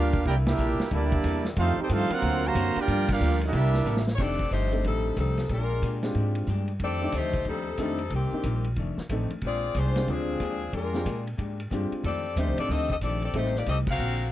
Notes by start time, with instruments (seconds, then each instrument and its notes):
Already playing: upright bass D2, trombone section D3 G3 A#3 D4 F4, hollow-body jazz guitar G3 D4 F4 A#4, trumpet section D4 G4 A#4 F5
0.13 kick, ride
0.25 upright bass C2, hollow-body jazz guitar C3 A#3 E4 A4, trombone section G3 A#3 E4 G4, trumpet section E4 A#4 D5 G5, kick, ride
0.46 trombone section G3 A#3 E4, trumpet section D4 G4 A#4 E5, snare, ride
0.57 upright bass A#1, hollow-body jazz guitar C3 A#3 E4 A4, hi-hat pedal
0.79 muted upright bass stroke, snare
0.91 upright bass D2, hollow-body jazz guitar C3 A#3 E4 A4, trombone section G3 A#3 D4, trumpet section A#3 E4 G4 D5, kick, ride
1.12 kick, ride
1.24 upright bass E2, hollow-body jazz guitar C3 A#3 E4 A4, kick, hi-hat pedal, ride
1.45 snare
1.56 upright bass F2, hollow-body jazz guitar F2 D#3 A3 D4, trombone section D#3 A3 C4 D4 F4 G4, trumpet section D#4 A4 C5 F5, kick, ride
1.77 trombone section C4 D#4 G4, trumpet section D#4 A4 C5 G5, muted upright bass stroke
1.89 hollow-body jazz guitar F2 D#3 A3 D4, upright bass G2, trombone section A3 C4 F4, trumpet section D#4 A4 C5 F5, kick, hi-hat pedal, ride
2.10 trombone section F#3 A#3 C4, trumpet section C4 F4 A#4 F#5, muted upright bass stroke, ride
2.22 upright bass D2, hollow-body jazz guitar D3 A#3 C4 F#4, trombone section D3 A#3 C4 F#4, kick, ride
2.45 trombone section C3 F#3 A#3, trumpet section F#4 C5 F5 A#5
2.55 upright bass F#2, hollow-body jazz guitar D3 A#3 C4 F#4, kick, hi-hat pedal, ride
2.76 trombone section A#3 D4 G4, muted upright bass stroke, ride
2.81 trumpet section F4 A#4 D5 G5
2.87 upright bass G2, hollow-body jazz guitar G2 F3 A#3 D4, trombone section G3 F4, kick, ride
3.09 trombone section A#3 D4 F4, trumpet section D4 G4 A#4 F5, kick, crash
3.20 upright bass D2, hollow-body jazz guitar G2 F3 A#3 D4, hi-hat pedal
3.41 trombone section G3 A#3 E4, ride
3.46 trumpet section D4 G4 A#4 E5
3.53 upright bass C2, hollow-body jazz guitar C3 A#3 E4 A4, trombone section G3 E4, kick, ride
3.74 snare
3.85 upright bass A1, hollow-body jazz guitar C3 A#3 E4 A4, hi-hat pedal
3.97 snare
4.07 snare
4.15 upright bass F1, hollow-body jazz guitar F2, grand piano A3 C4, saxophone section C#5, kick, snare, crash
4.19 hollow-body jazz guitar D#3 A3 D4, saxophone section C4 G4 A4 D5, grand piano D4 D#4 G4
4.39 kick
4.51 upright bass G1, hollow-body jazz guitar F2 D#3 A3 D4, saxophone section A3 D#4 G4 C5, kick, hi-hat pedal, ride
4.71 grand piano A3 C4 D4 D#4 A4, ride
4.84 upright bass A1, hollow-body jazz guitar F2 D#3 A3 D4, saxophone section G3 C4 D#4 A4, kick, ride
5.17 upright bass C2, hollow-body jazz guitar F2 D#3 A3 D4, saxophone section G3 C4 D#4 A4, kick, hi-hat pedal, ride
5.37 snare, ride
5.49 upright bass A#1, hollow-body jazz guitar A#2 G#3 D4 G4, saxophone section G#3 D4 F4 A#4, kick, ride
5.82 upright bass A#2, hollow-body jazz guitar A#2 G#3 D4 G4, kick, hi-hat pedal, ride
6.03 grand piano G#3 C4 D4 F4 G4, snare, ride
6.14 upright bass G#2, hollow-body jazz guitar A#2 G#3 D4 G4, kick, ride
6.35 ride
6.46 upright bass G2, hollow-body jazz guitar A#2 G#3 D4 G4, kick, hi-hat pedal
6.68 ride
6.79 upright bass F2, hollow-body jazz guitar F2 D#3 A3 D4, saxophone section A4 D5, kick, ride
6.84 saxophone section C4 G4
7.01 grand piano A3 C4 D4 D#4 G4
7.12 upright bass D2, hollow-body jazz guitar F2 D#3 A3 D4, saxophone section C5, kick, hi-hat pedal, ride
7.16 saxophone section A3 D#4 G4
7.33 kick, ride
7.45 upright bass D#2, hollow-body jazz guitar F2 D#3 A3 D4, saxophone section G3, kick, ride
7.49 saxophone section C4 D#4 A4
7.77 upright bass F2, hollow-body jazz guitar F2 D#3 A3 D4, saxophone section G3 C4 D#4 A4, grand piano A3 C4 D4 D#4 A4, kick, hi-hat pedal, ride
7.98 ride
8.10 upright bass C2, hollow-body jazz guitar C3 G3 A#3 D#4, saxophone section A#3, kick, ride
8.14 saxophone section D#3 C4 G4
8.32 grand piano A#3 C4 D4 D#4 G4, muted upright bass stroke
8.43 upright bass A#1, hollow-body jazz guitar C3 G3 A#3 D#4, kick, hi-hat pedal, ride
8.64 ride
8.76 upright bass F1, hollow-body jazz guitar F2 D#3 A3 D4, kick, ride
8.97 muted upright bass stroke, snare
9.09 upright bass A1, hollow-body jazz guitar F2 D#3 A3 D4, grand piano A3 C4 D4 D#4 A4, kick, hi-hat pedal, ride
9.30 ride
9.41 upright bass A#1, hollow-body jazz guitar A#2 G#3 D4 G4, kick, ride
9.46 saxophone section C4 F4 G#4 D5
9.74 upright bass C2, hollow-body jazz guitar A#2 G#3 D4 G4, saxophone section G#3 D4 F4 C5, kick, hi-hat pedal, ride
9.96 grand piano G#3 C4 D4 F4 G4, snare, ride
10.08 upright bass D2, hollow-body jazz guitar A#2 G#3 D4 G4, saxophone section F3 C4 D4 G#4, kick, ride
10.40 upright bass D#2, hollow-body jazz guitar A#2 G#3 D4 G4, kick, hi-hat pedal, ride
10.72 upright bass F2, hollow-body jazz guitar A#2 G#3 D4 G4, saxophone section G#3 D4 F4 A#4, kick, ride
10.94 grand piano G#3 C4 D4 F4 G4, snare
11.05 upright bass A#2, hollow-body jazz guitar A#2 G#3 D4 G4, kick, hi-hat pedal, ride
11.27 ride
11.37 upright bass G#2, hollow-body jazz guitar A#2 G#3 D4 G4, kick, ride
11.60 ride
11.71 upright bass G2, hollow-body jazz guitar A#2 G#3 D4 G4, grand piano G#3 C4 D4 F4 G4, kick, hi-hat pedal
11.91 muted upright bass stroke, ride
12.03 hollow-body jazz guitar F2 D#3 A3 D4, upright bass F2, saxophone section C4 G4 A4 D5, kick, ride
12.36 upright bass D#2, hollow-body jazz guitar F2 D#3 A3 D4, grand piano A3 C4 D4 D#4 G4, saxophone section A3 D#4 G4 C5, kick, hi-hat pedal, ride
12.47 upright bass C2
12.57 upright bass A1, saxophone section C4 G4 A4 D5, ride
12.69 upright bass D2, hollow-body jazz guitar F2 D#3 A3 D4, saxophone section C4 G4 A4 D#5, kick, snare
12.90 saxophone section C4 G4 A4 D#5, kick
13.01 upright bass A#1, hollow-body jazz guitar F2 D#3 A3 D4, saxophone section C4 G4 A4 D5, kick, hi-hat pedal, ride
13.22 saxophone section C4 G4 A4 D5, ride
13.34 upright bass A1, hollow-body jazz guitar A2 G3 C4 D#4, grand piano A3 C4 D#4 G4 A4, saxophone section A3 D#4 G4 C5, kick, ride
13.45 snare
13.56 saxophone section A#3 D#4 G4 D5, snare
13.66 upright bass C2, hollow-body jazz guitar A2 G3 C4 D#4, saxophone section C4 G4 A4 D#5, kick, hi-hat pedal, ride
13.87 saxophone section C4 F#4 A#4 F5, kick, crash
13.98 upright bass A#1, hollow-body jazz guitar D3 A#3 C4 F#4